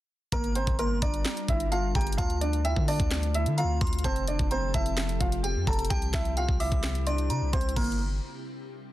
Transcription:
0.32 808-style bass G1, ambient pad G3 D4 F4 A#4, grand piano A#3 A#4, synth bell A#5, kick, closed hi-hat
0.44 closed hi-hat
0.55 grand piano C4 C5, closed hi-hat
0.67 808-style bass G1, kick, closed hi-hat
0.79 grand piano A#3 A#4, synth bell C6, closed hi-hat
1.02 808-style bass G1, grand piano D4 D5, synth bell A#5, kick, closed hi-hat
1.14 closed hi-hat
1.25 finger snap, snare, closed hi-hat
1.37 closed hi-hat
1.48 808-style bass G1, grand piano E4 E5, kick, closed hi-hat
1.60 closed hi-hat
1.72 grand piano F4 F5, synth bell A5, closed hi-hat
1.95 808-style bass G1, grand piano G4 G5, synth bell A#5, kick, closed hi-hat
2.01 closed hi-hat
2.07 closed hi-hat
2.12 closed hi-hat
2.17 808-style bass D2, ambient pad D3 A3 C4, grand piano F4 F5, synth bell A5, kick, closed hi-hat
2.30 closed hi-hat
2.41 grand piano D4 D5, closed hi-hat
2.53 closed hi-hat
2.65 grand piano E4 E5, synth bell G5, closed hi-hat
2.76 808-style bass D3, kick
2.88 grand piano D4 D5, synth bell A5, open hi-hat
3.00 808-style bass D2, kick, closed hi-hat
3.11 finger snap, snare, closed hi-hat
3.23 closed hi-hat
3.34 grand piano E4 E5, closed hi-hat
3.46 808-style bass D3, closed hi-hat
3.58 grand piano F4 F5, synth bell A#5, closed hi-hat
3.64 808-style bass D2
3.81 808-style bass D2, synth bell C6, kick, closed hi-hat
3.87 closed hi-hat
3.93 closed hi-hat
3.99 closed hi-hat
4.04 808-style bass F1, ambient pad F3 G4 A4, grand piano C4 C5, synth bell A5, kick, closed hi-hat
4.16 closed hi-hat
4.27 grand piano D4 D5, closed hi-hat
4.39 808-style bass F1, kick, closed hi-hat
4.51 grand piano C4 C5, synth bell A#5, closed hi-hat
4.74 808-style bass F1, grand piano E4 E5, synth bell A5, kick, closed hi-hat
4.86 closed hi-hat
4.97 finger snap, snare, closed hi-hat
5.09 closed hi-hat
5.20 808-style bass F1, grand piano F4 F5, kick, closed hi-hat
5.32 closed hi-hat
5.43 grand piano G4 G5, synth bell G5, closed hi-hat
5.56 808-style bass F2
5.67 808-style bass F1, grand piano A4 A5, synth bell A#5, kick, closed hi-hat
5.73 closed hi-hat
5.79 closed hi-hat
5.85 closed hi-hat
5.90 808-style bass C2, ambient pad C3 E4, grand piano G4 G5, synth bell A5, kick, closed hi-hat
6.02 closed hi-hat
6.14 808-style bass C2, grand piano E4 E5, finger snap, kick, snare, closed hi-hat
6.25 closed hi-hat
6.37 grand piano F4 F5, synth bell G5, closed hi-hat
6.49 808-style bass C2, kick
6.60 grand piano E4 E5, synth bell D6, open hi-hat
6.72 808-style bass C2, kick, closed hi-hat
6.83 finger snap, snare, closed hi-hat
6.95 closed hi-hat
7.07 grand piano D4 D5, synth bell C6, closed hi-hat
7.18 closed hi-hat
7.30 808-style bass C3, synth bell A#5, closed hi-hat
7.42 808-style bass C2
7.53 808-style bass C2, grand piano C4 C5, synth bell C6, kick, closed hi-hat
7.61 closed hi-hat
7.69 closed hi-hat
7.76 808-style bass G1, grand piano A#3, synth bell A#5, kick, closed hi-hat, crash
7.84 closed hi-hat
7.92 closed hi-hat

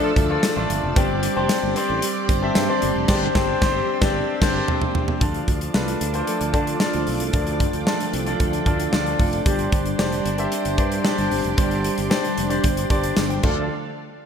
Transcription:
Already playing: analog polysynth F3 D4 A4, clean electric guitar F3 A3 D4, grand piano A3 D4 F4 A4 D5 E5, string machine F4 D5 A5 E6
0.16 fretless electric bass D2, clean electric guitar G3, kick, closed hi-hat
0.30 clean electric guitar A3, grand piano A3 D4 F4 A4 D5
0.43 clean electric guitar D4, snare, closed hi-hat, tambourine
0.56 fretless electric bass A1, grand piano A3 D4 F4 A4 D5
0.69 fretless electric bass G1, clean electric guitar F3, closed hi-hat
0.83 fretless electric bass F1
0.95 fretless electric bass G1, clean electric guitar G3 D4, grand piano C4 D4 G4 C5 D5, string machine G4 C6 D6, kick, closed hi-hat
1.23 clean electric guitar G3, closed hi-hat
1.36 fretless electric bass F1, grand piano C4 D4 G4 C5 D5
1.49 clean electric guitar C4, snare, closed hi-hat, tambourine
1.63 fretless electric bass G1
1.76 grand piano C4 D4 G4 C5 D5, clean electric guitar D4, closed hi-hat
1.90 fretless electric bass A1
2.02 clean electric guitar G3, closed hi-hat
2.29 fretless electric bass G1, clean electric guitar C4, kick, closed hi-hat
2.42 grand piano C4 D4 G4 C5 E5
2.55 fretless electric bass G2, clean electric guitar D4, snare, closed hi-hat, tambourine
2.69 grand piano C4 D4 G4 C5 D5
2.82 fretless electric bass G1, clean electric guitar G3, closed hi-hat
2.96 fretless electric bass F1
3.08 fretless electric bass G1, clean electric guitar G3 D4, grand piano C4 D4 G4 C5 D5, string machine E6, kick, snare, crash
3.35 fretless electric bass G1, grand piano C4 D4 G4 C5, kick, snare
3.61 fretless electric bass G1, grand piano C4 D4 G4 C5, kick, snare
4.01 fretless electric bass G1, grand piano C4 D4 G4 C5 D5, kick, snare
4.42 fretless electric bass G1, grand piano C4 D4 G4 C5 D5, kick, snare, crash
4.68 floor tom
4.81 floor tom
4.95 floor tom
5.08 floor tom
5.21 fretless electric bass D2, clean electric guitar F3, grand piano D4 F4 A4 D5, string machine F4 D5 A5 D6, kick, closed hi-hat
5.34 closed hi-hat
5.48 fretless electric bass D2, clean electric guitar F3, kick, closed hi-hat
5.61 closed hi-hat
5.74 fretless electric bass C2, clean electric guitar A3, grand piano D4 F4 A4 B4, snare
5.88 closed hi-hat
6.01 fretless electric bass D2, clean electric guitar D4, closed hi-hat
6.14 grand piano D4 F4 A4 C5, closed hi-hat
6.27 analog polysynth F3 D4 A4, clean electric guitar A3, closed hi-hat
6.41 fretless electric bass D2, closed hi-hat
6.53 fretless electric bass D3, grand piano D4 F4 A4 D5, clean electric guitar D4, kick, closed hi-hat
6.67 closed hi-hat
6.80 clean electric guitar F3, grand piano D4 F4 A4 D5, snare
6.93 fretless electric bass D2, closed hi-hat
7.07 fretless electric bass B1, clean electric guitar A3, open hi-hat
7.20 fretless electric bass C2, closed hi-hat
7.33 fretless electric bass D2, clean electric guitar F3, grand piano D4 F4 A4 D5, string machine G5, kick, closed hi-hat
7.47 closed hi-hat
7.60 clean electric guitar F3, kick, closed hi-hat
7.73 fretless electric bass D2, closed hi-hat
7.86 clean electric guitar A3, grand piano D4 F4 A4 D5, snare
8.00 closed hi-hat
8.13 fretless electric bass C2, clean electric guitar D4, closed hi-hat
8.26 grand piano D4 F4 A4 D5, closed hi-hat
8.40 fretless electric bass D2, clean electric guitar A3, kick, closed hi-hat
8.53 closed hi-hat
8.66 fretless electric bass D2, grand piano D4 F4 A4 D5, clean electric guitar D4, kick, closed hi-hat
8.80 closed hi-hat
8.93 fretless electric bass D2, clean electric guitar F3, grand piano D4 F4 A4 D5, snare
9.06 closed hi-hat
9.19 fretless electric bass F1, clean electric guitar A3, kick, open hi-hat
9.33 closed hi-hat
9.45 fretless electric bass G1, analog polysynth G3 D4 C5, clean electric guitar G3, grand piano D4 G4 C5 D5, string machine G4 D5 C6 D6, kick, closed hi-hat
9.59 closed hi-hat
9.72 fretless electric bass G1, clean electric guitar G3, kick, closed hi-hat
9.86 closed hi-hat
9.98 fretless electric bass F1, clean electric guitar C4, grand piano D4 G4 C5 D5, snare
10.12 closed hi-hat
10.25 fretless electric bass G1, clean electric guitar D4, closed hi-hat
10.38 grand piano D4 G4 C5 E5, closed hi-hat
10.52 clean electric guitar C4, closed hi-hat
10.65 fretless electric bass G1, closed hi-hat
10.77 fretless electric bass G2, grand piano D4 G4 C5 D5, clean electric guitar D4, kick, closed hi-hat
10.92 closed hi-hat
11.04 clean electric guitar G3, grand piano D4 G4 C5 D5, snare
11.18 fretless electric bass G1, closed hi-hat
11.31 fretless electric bass G1, clean electric guitar C4, open hi-hat
11.44 fretless electric bass F1, closed hi-hat
11.57 fretless electric bass G1, clean electric guitar G3, grand piano D4 G4 C5 D5, kick, closed hi-hat
11.71 closed hi-hat
11.84 clean electric guitar G3, closed hi-hat
11.98 fretless electric bass G1, closed hi-hat
12.10 clean electric guitar C4, grand piano D4 G4 C5 D5, snare, tambourine
12.25 closed hi-hat
12.38 fretless electric bass F1, clean electric guitar D4, closed hi-hat
12.49 grand piano D4 G4 C5 D5, closed hi-hat
12.64 fretless electric bass G1, clean electric guitar C4, kick, closed hi-hat
12.77 closed hi-hat
12.90 fretless electric bass G1, grand piano D4 G4 C5 D5, clean electric guitar D4, kick, closed hi-hat
13.04 closed hi-hat
13.17 fretless electric bass G1, clean electric guitar G3, snare, tambourine
13.30 grand piano D5 G5, closed hi-hat
13.43 fretless electric bass D2, string machine D3 D4 A4 F5, clean electric guitar F3 A3 D4, analog polysynth F3 D4 A4, grand piano D4 F4 A4 D5, kick, crash

